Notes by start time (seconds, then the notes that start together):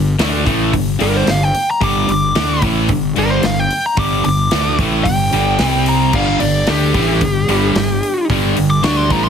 Already playing: G1 G2 D3
0.19 D2 D3 A3 D4, snare, open hi-hat
0.45 A1 A2 E3 A3, kick, open hi-hat
0.72 G1 G2 D3, kick, open hi-hat
0.99 G1 G2 D3 G3 A#4, open hi-hat
1.17 C5
1.27 G1 G2 D3 F5, snare, open hi-hat
1.43 G5
1.55 open hi-hat
1.71 A#5
1.81 G1 G2 D3 G3 D6, kick, open hi-hat
2.08 G1 G2 D3 D6, open hi-hat
2.35 D2 D3 A3 D4, snare, open hi-hat
2.61 A1 A2 E3 A3, kick, open hi-hat
2.89 G1 G2 D3, kick, open hi-hat
3.16 G1 G2 D3 G3 A#4, open hi-hat
3.30 C5
3.43 G1 G2 D3 F5, snare, open hi-hat
3.60 G5
3.71 open hi-hat
3.86 A#5
3.97 G1 G2 D3 G3 D6, kick, open hi-hat
4.25 G1 G2 D3 D6, open hi-hat
4.51 D2 D3 A3 D4, snare, open hi-hat
4.79 A1 A2 E3 A3, kick, open hi-hat
5.04 G1 G2 D3 G5, kick, open hi-hat
5.33 G1 G2 D3 G3, open hi-hat
5.59 C2 C3 G3 C4, snare, open hi-hat
5.86 A#5, open hi-hat
6.13 G1 G2 D3 G3 D4 G4 F5, kick, crash
6.40 G1 G2 D3 D5, open hi-hat
6.67 D2 D3 A3 D4 G4, snare, open hi-hat
6.94 A1 A2 E3 A3, kick, open hi-hat
7.21 G1 G2 D3, kick, open hi-hat
7.48 G1 G2 D3 G3, open hi-hat
7.75 G1 G2 D3, snare, open hi-hat
8.03 open hi-hat
8.30 G1 G2 D3 G3, kick, open hi-hat
8.56 G1 G2 D3, open hi-hat
8.70 D6
8.83 D2 D3 A3 D4 C#6, snare, open hi-hat
8.97 C6
9.10 A1 A2 E3 A3 A#5, kick, open hi-hat
9.24 C6